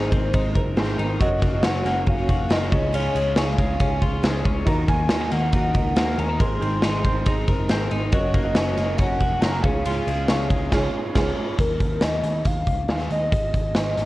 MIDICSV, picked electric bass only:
0, 0, Header, 1, 2, 480
1, 0, Start_track
1, 0, Tempo, 432588
1, 1342, Time_signature, 4, 2, 24, 8
1, 15593, End_track
2, 0, Start_track
2, 0, Title_t, "Picked electric bass"
2, 0, Program_c, 0, 34
2, 137, Note_on_c, 0, 32, 107
2, 336, Note_off_c, 0, 32, 0
2, 380, Note_on_c, 0, 32, 103
2, 578, Note_off_c, 0, 32, 0
2, 619, Note_on_c, 0, 30, 95
2, 817, Note_off_c, 0, 30, 0
2, 856, Note_on_c, 0, 32, 98
2, 1055, Note_off_c, 0, 32, 0
2, 1098, Note_on_c, 0, 32, 101
2, 1296, Note_off_c, 0, 32, 0
2, 1343, Note_on_c, 0, 30, 99
2, 1539, Note_off_c, 0, 30, 0
2, 1581, Note_on_c, 0, 30, 92
2, 1778, Note_off_c, 0, 30, 0
2, 1813, Note_on_c, 0, 30, 94
2, 2013, Note_off_c, 0, 30, 0
2, 2056, Note_on_c, 0, 30, 108
2, 2255, Note_off_c, 0, 30, 0
2, 2298, Note_on_c, 0, 30, 96
2, 2496, Note_off_c, 0, 30, 0
2, 2540, Note_on_c, 0, 29, 91
2, 2737, Note_off_c, 0, 29, 0
2, 2779, Note_on_c, 0, 30, 101
2, 2977, Note_off_c, 0, 30, 0
2, 3022, Note_on_c, 0, 37, 90
2, 3415, Note_off_c, 0, 37, 0
2, 3496, Note_on_c, 0, 37, 100
2, 3695, Note_off_c, 0, 37, 0
2, 3736, Note_on_c, 0, 37, 99
2, 3935, Note_off_c, 0, 37, 0
2, 3979, Note_on_c, 0, 37, 98
2, 4176, Note_off_c, 0, 37, 0
2, 4221, Note_on_c, 0, 37, 99
2, 4418, Note_off_c, 0, 37, 0
2, 4462, Note_on_c, 0, 37, 88
2, 4658, Note_off_c, 0, 37, 0
2, 4698, Note_on_c, 0, 37, 96
2, 4896, Note_off_c, 0, 37, 0
2, 4942, Note_on_c, 0, 37, 100
2, 5138, Note_off_c, 0, 37, 0
2, 5180, Note_on_c, 0, 39, 103
2, 5377, Note_off_c, 0, 39, 0
2, 5422, Note_on_c, 0, 39, 99
2, 5618, Note_off_c, 0, 39, 0
2, 5661, Note_on_c, 0, 39, 97
2, 5857, Note_off_c, 0, 39, 0
2, 5908, Note_on_c, 0, 39, 100
2, 6101, Note_off_c, 0, 39, 0
2, 6138, Note_on_c, 0, 39, 100
2, 6335, Note_off_c, 0, 39, 0
2, 6380, Note_on_c, 0, 37, 78
2, 6577, Note_off_c, 0, 37, 0
2, 6620, Note_on_c, 0, 39, 99
2, 6816, Note_off_c, 0, 39, 0
2, 6860, Note_on_c, 0, 39, 94
2, 7056, Note_off_c, 0, 39, 0
2, 7101, Note_on_c, 0, 32, 106
2, 7297, Note_off_c, 0, 32, 0
2, 7341, Note_on_c, 0, 32, 112
2, 7537, Note_off_c, 0, 32, 0
2, 7578, Note_on_c, 0, 32, 83
2, 7775, Note_off_c, 0, 32, 0
2, 7816, Note_on_c, 0, 32, 101
2, 8014, Note_off_c, 0, 32, 0
2, 8059, Note_on_c, 0, 32, 105
2, 8256, Note_off_c, 0, 32, 0
2, 8301, Note_on_c, 0, 30, 91
2, 8497, Note_off_c, 0, 30, 0
2, 8542, Note_on_c, 0, 32, 87
2, 8738, Note_off_c, 0, 32, 0
2, 8785, Note_on_c, 0, 32, 102
2, 8979, Note_off_c, 0, 32, 0
2, 9020, Note_on_c, 0, 30, 112
2, 9217, Note_off_c, 0, 30, 0
2, 9258, Note_on_c, 0, 30, 94
2, 9455, Note_off_c, 0, 30, 0
2, 9500, Note_on_c, 0, 30, 89
2, 9696, Note_off_c, 0, 30, 0
2, 9738, Note_on_c, 0, 30, 98
2, 9935, Note_off_c, 0, 30, 0
2, 9979, Note_on_c, 0, 30, 107
2, 10176, Note_off_c, 0, 30, 0
2, 10219, Note_on_c, 0, 29, 80
2, 10416, Note_off_c, 0, 29, 0
2, 10455, Note_on_c, 0, 30, 106
2, 10654, Note_off_c, 0, 30, 0
2, 10695, Note_on_c, 0, 37, 85
2, 11090, Note_off_c, 0, 37, 0
2, 11175, Note_on_c, 0, 37, 91
2, 11374, Note_off_c, 0, 37, 0
2, 11420, Note_on_c, 0, 37, 92
2, 11616, Note_off_c, 0, 37, 0
2, 11656, Note_on_c, 0, 37, 99
2, 11854, Note_off_c, 0, 37, 0
2, 11901, Note_on_c, 0, 37, 94
2, 12063, Note_off_c, 0, 37, 0
2, 12382, Note_on_c, 0, 37, 92
2, 12544, Note_off_c, 0, 37, 0
2, 12861, Note_on_c, 0, 39, 92
2, 13057, Note_off_c, 0, 39, 0
2, 13099, Note_on_c, 0, 39, 78
2, 13296, Note_off_c, 0, 39, 0
2, 13342, Note_on_c, 0, 39, 86
2, 13538, Note_off_c, 0, 39, 0
2, 13576, Note_on_c, 0, 39, 102
2, 13775, Note_off_c, 0, 39, 0
2, 13822, Note_on_c, 0, 39, 94
2, 14018, Note_off_c, 0, 39, 0
2, 14064, Note_on_c, 0, 37, 67
2, 14260, Note_off_c, 0, 37, 0
2, 14304, Note_on_c, 0, 39, 94
2, 14500, Note_off_c, 0, 39, 0
2, 14540, Note_on_c, 0, 39, 82
2, 14738, Note_off_c, 0, 39, 0
2, 14782, Note_on_c, 0, 32, 87
2, 14979, Note_off_c, 0, 32, 0
2, 15022, Note_on_c, 0, 32, 85
2, 15219, Note_off_c, 0, 32, 0
2, 15263, Note_on_c, 0, 32, 81
2, 15460, Note_off_c, 0, 32, 0
2, 15503, Note_on_c, 0, 32, 95
2, 15593, Note_off_c, 0, 32, 0
2, 15593, End_track
0, 0, End_of_file